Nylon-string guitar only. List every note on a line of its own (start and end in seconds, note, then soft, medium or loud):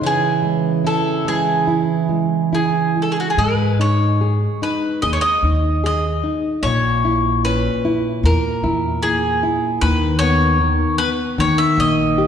0.01 3.34 C#3 medium
0.42 0.83 G#3 soft
0.84 1.24 E4 soft
1.25 1.66 G#3 soft
1.67 2.08 E4 medium
2.09 2.51 G#3 soft
2.53 2.94 E4 soft
2.96 3.37 G#3 soft
3.38 6.60 G#3 medium
3.79 4.20 D#4 soft
4.21 4.61 G#4 soft
4.62 5.02 D#4 soft
5.03 5.42 G#4 soft
5.44 5.83 D#4 soft
5.84 6.23 G#4 soft
6.24 6.63 D#4 soft
6.64 9.78 A#2 medium
7.05 7.43 E4 soft
7.45 7.83 C#4 medium
7.85 8.23 E4 medium
8.25 8.63 A#3 medium
8.64 9.02 E4 soft
9.04 9.42 A#3 medium
9.43 9.81 E4 medium
9.82 10.59 D#3 medium
10.21 10.59 B3 medium
10.60 10.98 D#3 medium
10.99 11.37 B3 medium
11.38 12.27 D#3 medium
11.78 12.17 A#3 soft
12.18 12.27 G4 soft